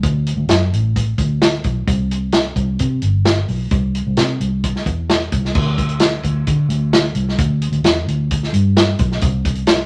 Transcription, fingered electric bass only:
0, 0, Header, 1, 2, 480
1, 0, Start_track
1, 0, Tempo, 459418
1, 38, Time_signature, 4, 2, 24, 8
1, 10300, End_track
2, 0, Start_track
2, 0, Title_t, "Fingered electric bass"
2, 0, Program_c, 0, 33
2, 35, Note_on_c, 0, 38, 102
2, 349, Note_off_c, 0, 38, 0
2, 385, Note_on_c, 0, 38, 83
2, 495, Note_off_c, 0, 38, 0
2, 512, Note_on_c, 0, 42, 91
2, 723, Note_off_c, 0, 42, 0
2, 761, Note_on_c, 0, 33, 88
2, 1176, Note_off_c, 0, 33, 0
2, 1236, Note_on_c, 0, 38, 82
2, 1654, Note_off_c, 0, 38, 0
2, 1722, Note_on_c, 0, 35, 85
2, 1929, Note_off_c, 0, 35, 0
2, 1955, Note_on_c, 0, 36, 101
2, 2641, Note_off_c, 0, 36, 0
2, 2674, Note_on_c, 0, 36, 83
2, 2885, Note_off_c, 0, 36, 0
2, 2919, Note_on_c, 0, 48, 97
2, 3128, Note_off_c, 0, 48, 0
2, 3156, Note_on_c, 0, 31, 71
2, 3574, Note_off_c, 0, 31, 0
2, 3641, Note_on_c, 0, 35, 83
2, 3849, Note_off_c, 0, 35, 0
2, 3878, Note_on_c, 0, 36, 104
2, 4191, Note_off_c, 0, 36, 0
2, 4247, Note_on_c, 0, 36, 79
2, 4348, Note_off_c, 0, 36, 0
2, 4359, Note_on_c, 0, 48, 87
2, 4568, Note_off_c, 0, 48, 0
2, 4599, Note_on_c, 0, 36, 73
2, 5015, Note_off_c, 0, 36, 0
2, 5078, Note_on_c, 0, 40, 88
2, 5495, Note_off_c, 0, 40, 0
2, 5559, Note_on_c, 0, 36, 78
2, 5767, Note_off_c, 0, 36, 0
2, 5801, Note_on_c, 0, 38, 100
2, 6484, Note_off_c, 0, 38, 0
2, 6512, Note_on_c, 0, 38, 84
2, 6723, Note_off_c, 0, 38, 0
2, 6765, Note_on_c, 0, 50, 91
2, 6970, Note_off_c, 0, 50, 0
2, 6988, Note_on_c, 0, 38, 88
2, 7408, Note_off_c, 0, 38, 0
2, 7468, Note_on_c, 0, 36, 80
2, 7680, Note_off_c, 0, 36, 0
2, 7712, Note_on_c, 0, 38, 99
2, 8027, Note_off_c, 0, 38, 0
2, 8066, Note_on_c, 0, 38, 83
2, 8175, Note_off_c, 0, 38, 0
2, 8194, Note_on_c, 0, 40, 94
2, 8403, Note_off_c, 0, 40, 0
2, 8439, Note_on_c, 0, 38, 86
2, 8854, Note_off_c, 0, 38, 0
2, 8910, Note_on_c, 0, 43, 81
2, 9328, Note_off_c, 0, 43, 0
2, 9395, Note_on_c, 0, 35, 91
2, 9603, Note_off_c, 0, 35, 0
2, 9631, Note_on_c, 0, 36, 106
2, 10300, Note_off_c, 0, 36, 0
2, 10300, End_track
0, 0, End_of_file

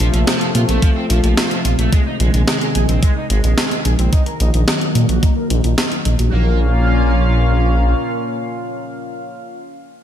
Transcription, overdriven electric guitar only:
0, 0, Header, 1, 2, 480
1, 0, Start_track
1, 0, Key_signature, -5, "minor"
1, 0, Tempo, 550459
1, 1679, Time_signature, 4, 2, 24, 8
1, 8750, End_track
2, 0, Start_track
2, 0, Title_t, "Overdriven electric guitar"
2, 0, Program_c, 0, 29
2, 120, Note_on_c, 0, 53, 74
2, 155, Note_off_c, 0, 53, 0
2, 239, Note_on_c, 0, 53, 98
2, 329, Note_off_c, 0, 53, 0
2, 359, Note_on_c, 0, 53, 100
2, 395, Note_off_c, 0, 53, 0
2, 479, Note_on_c, 0, 65, 72
2, 515, Note_off_c, 0, 65, 0
2, 599, Note_on_c, 0, 57, 74
2, 689, Note_off_c, 0, 57, 0
2, 719, Note_on_c, 0, 53, 80
2, 779, Note_off_c, 0, 53, 0
2, 838, Note_on_c, 0, 60, 97
2, 899, Note_off_c, 0, 60, 0
2, 959, Note_on_c, 0, 53, 74
2, 1019, Note_off_c, 0, 53, 0
2, 1079, Note_on_c, 0, 53, 71
2, 1139, Note_off_c, 0, 53, 0
2, 1198, Note_on_c, 0, 53, 99
2, 1289, Note_off_c, 0, 53, 0
2, 1318, Note_on_c, 0, 53, 97
2, 1379, Note_off_c, 0, 53, 0
2, 1438, Note_on_c, 0, 65, 73
2, 1475, Note_off_c, 0, 65, 0
2, 1558, Note_on_c, 0, 57, 75
2, 1649, Note_off_c, 0, 57, 0
2, 1678, Note_on_c, 0, 56, 78
2, 1739, Note_off_c, 0, 56, 0
2, 1799, Note_on_c, 0, 63, 95
2, 1859, Note_off_c, 0, 63, 0
2, 1919, Note_on_c, 0, 56, 75
2, 1979, Note_off_c, 0, 56, 0
2, 2038, Note_on_c, 0, 56, 71
2, 2075, Note_off_c, 0, 56, 0
2, 2158, Note_on_c, 0, 56, 99
2, 2249, Note_off_c, 0, 56, 0
2, 2278, Note_on_c, 0, 56, 100
2, 2315, Note_off_c, 0, 56, 0
2, 2399, Note_on_c, 0, 68, 75
2, 2435, Note_off_c, 0, 68, 0
2, 2518, Note_on_c, 0, 60, 71
2, 2609, Note_off_c, 0, 60, 0
2, 2639, Note_on_c, 0, 56, 79
2, 2699, Note_off_c, 0, 56, 0
2, 2759, Note_on_c, 0, 63, 94
2, 2819, Note_off_c, 0, 63, 0
2, 2878, Note_on_c, 0, 56, 73
2, 2939, Note_off_c, 0, 56, 0
2, 2999, Note_on_c, 0, 56, 71
2, 3059, Note_off_c, 0, 56, 0
2, 3119, Note_on_c, 0, 56, 94
2, 3209, Note_off_c, 0, 56, 0
2, 3239, Note_on_c, 0, 56, 95
2, 3299, Note_off_c, 0, 56, 0
2, 3359, Note_on_c, 0, 68, 71
2, 3395, Note_off_c, 0, 68, 0
2, 3479, Note_on_c, 0, 60, 73
2, 3569, Note_off_c, 0, 60, 0
2, 3598, Note_on_c, 0, 63, 76
2, 3659, Note_off_c, 0, 63, 0
2, 3719, Note_on_c, 0, 70, 96
2, 3779, Note_off_c, 0, 70, 0
2, 3839, Note_on_c, 0, 63, 70
2, 3899, Note_off_c, 0, 63, 0
2, 3959, Note_on_c, 0, 63, 70
2, 3995, Note_off_c, 0, 63, 0
2, 4079, Note_on_c, 0, 63, 96
2, 4169, Note_off_c, 0, 63, 0
2, 4199, Note_on_c, 0, 63, 97
2, 4235, Note_off_c, 0, 63, 0
2, 4319, Note_on_c, 0, 75, 70
2, 4355, Note_off_c, 0, 75, 0
2, 4439, Note_on_c, 0, 66, 70
2, 4529, Note_off_c, 0, 66, 0
2, 4560, Note_on_c, 0, 63, 75
2, 4620, Note_off_c, 0, 63, 0
2, 4679, Note_on_c, 0, 70, 95
2, 4739, Note_off_c, 0, 70, 0
2, 4801, Note_on_c, 0, 63, 71
2, 4860, Note_off_c, 0, 63, 0
2, 4919, Note_on_c, 0, 63, 69
2, 4979, Note_off_c, 0, 63, 0
2, 5040, Note_on_c, 0, 63, 92
2, 5130, Note_off_c, 0, 63, 0
2, 5159, Note_on_c, 0, 63, 93
2, 5219, Note_off_c, 0, 63, 0
2, 5278, Note_on_c, 0, 75, 67
2, 5315, Note_off_c, 0, 75, 0
2, 5398, Note_on_c, 0, 66, 69
2, 5489, Note_off_c, 0, 66, 0
2, 5518, Note_on_c, 0, 58, 83
2, 5742, Note_off_c, 0, 58, 0
2, 8750, End_track
0, 0, End_of_file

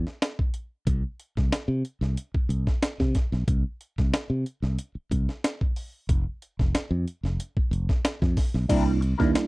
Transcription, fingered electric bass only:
0, 0, Header, 1, 3, 480
1, 0, Start_track
1, 0, Tempo, 652174
1, 639, Time_signature, 4, 2, 24, 8
1, 6971, End_track
2, 0, Start_track
2, 0, Title_t, "Fingered electric bass"
2, 0, Program_c, 0, 33
2, 641, Note_on_c, 0, 36, 100
2, 751, Note_off_c, 0, 36, 0
2, 1010, Note_on_c, 0, 36, 77
2, 1107, Note_off_c, 0, 36, 0
2, 1236, Note_on_c, 0, 48, 83
2, 1339, Note_off_c, 0, 48, 0
2, 1480, Note_on_c, 0, 36, 83
2, 1582, Note_off_c, 0, 36, 0
2, 1833, Note_on_c, 0, 36, 77
2, 1947, Note_off_c, 0, 36, 0
2, 2208, Note_on_c, 0, 48, 96
2, 2306, Note_off_c, 0, 48, 0
2, 2446, Note_on_c, 0, 35, 83
2, 2545, Note_off_c, 0, 35, 0
2, 2558, Note_on_c, 0, 36, 90
2, 2670, Note_off_c, 0, 36, 0
2, 2932, Note_on_c, 0, 36, 89
2, 3029, Note_off_c, 0, 36, 0
2, 3163, Note_on_c, 0, 48, 85
2, 3264, Note_off_c, 0, 48, 0
2, 3404, Note_on_c, 0, 36, 80
2, 3504, Note_off_c, 0, 36, 0
2, 3764, Note_on_c, 0, 36, 90
2, 3874, Note_off_c, 0, 36, 0
2, 4482, Note_on_c, 0, 29, 104
2, 4593, Note_off_c, 0, 29, 0
2, 4853, Note_on_c, 0, 29, 83
2, 4949, Note_off_c, 0, 29, 0
2, 5083, Note_on_c, 0, 41, 87
2, 5184, Note_off_c, 0, 41, 0
2, 5325, Note_on_c, 0, 29, 76
2, 5424, Note_off_c, 0, 29, 0
2, 5677, Note_on_c, 0, 29, 87
2, 5789, Note_off_c, 0, 29, 0
2, 6049, Note_on_c, 0, 41, 77
2, 6146, Note_off_c, 0, 41, 0
2, 6287, Note_on_c, 0, 35, 81
2, 6385, Note_off_c, 0, 35, 0
2, 6401, Note_on_c, 0, 36, 105
2, 6720, Note_off_c, 0, 36, 0
2, 6771, Note_on_c, 0, 39, 88
2, 6866, Note_off_c, 0, 39, 0
2, 6971, End_track
3, 0, Start_track
3, 0, Title_t, "Muted fingered electric bass strokes"
3, 1115, Note_on_c, 9, 29, 37
3, 1189, Note_off_c, 9, 29, 0
3, 1726, Note_on_c, 9, 29, 42
3, 1800, Note_off_c, 9, 29, 0
3, 3039, Note_on_c, 9, 29, 43
3, 3112, Note_off_c, 9, 29, 0
3, 3644, Note_on_c, 9, 29, 40
3, 3718, Note_off_c, 9, 29, 0
3, 4963, Note_on_c, 9, 29, 41
3, 5036, Note_off_c, 9, 29, 0
3, 5572, Note_on_c, 9, 29, 46
3, 5645, Note_off_c, 9, 29, 0
3, 6971, End_track
0, 0, End_of_file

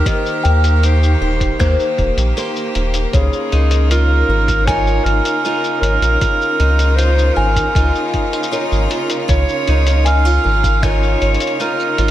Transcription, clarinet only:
0, 0, Header, 1, 2, 480
1, 0, Start_track
1, 0, Tempo, 769231
1, 37, Time_signature, 4, 2, 24, 8
1, 7556, End_track
2, 0, Start_track
2, 0, Title_t, "Clarinet"
2, 0, Program_c, 0, 71
2, 48, Note_on_c, 0, 70, 89
2, 529, Note_on_c, 0, 72, 86
2, 539, Note_off_c, 0, 70, 0
2, 1243, Note_off_c, 0, 72, 0
2, 1960, Note_on_c, 0, 68, 93
2, 2413, Note_off_c, 0, 68, 0
2, 2438, Note_on_c, 0, 70, 104
2, 2905, Note_on_c, 0, 73, 112
2, 2914, Note_off_c, 0, 70, 0
2, 3144, Note_on_c, 0, 70, 116
2, 3154, Note_off_c, 0, 73, 0
2, 3619, Note_off_c, 0, 70, 0
2, 3623, Note_on_c, 0, 70, 122
2, 4340, Note_on_c, 0, 72, 105
2, 4349, Note_off_c, 0, 70, 0
2, 4581, Note_on_c, 0, 70, 98
2, 4590, Note_off_c, 0, 72, 0
2, 5069, Note_off_c, 0, 70, 0
2, 5796, Note_on_c, 0, 73, 115
2, 6282, Note_on_c, 0, 77, 119
2, 6291, Note_off_c, 0, 73, 0
2, 6760, Note_on_c, 0, 73, 109
2, 6770, Note_off_c, 0, 77, 0
2, 7244, Note_on_c, 0, 70, 105
2, 7253, Note_off_c, 0, 73, 0
2, 7556, Note_off_c, 0, 70, 0
2, 7556, End_track
0, 0, End_of_file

